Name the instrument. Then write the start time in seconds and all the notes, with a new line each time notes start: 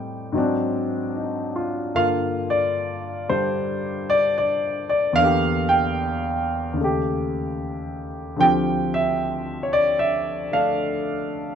grand piano
Already playing: A2 G3 C4 D#4 G5
0.32 G#2 F#3 C4
0.38 D4
1.15 D#4
1.56 F4
1.95 G2 D3 A#3 F4 F5
2.50 D5
3.29 D3 G3 D4 C5
4.10 D5
4.38 D5
4.89 D5
5.13 E2 D3 F5
5.20 A#3 G4
5.69 G5
6.73 D#2 C#3
6.81 A3 G4
8.36 D2 D3 F3 C4
8.41 F4 G4 G5
8.94 E5
9.63 C#5
9.73 D5
9.99 E5
10.51 D3 A3 D4 F5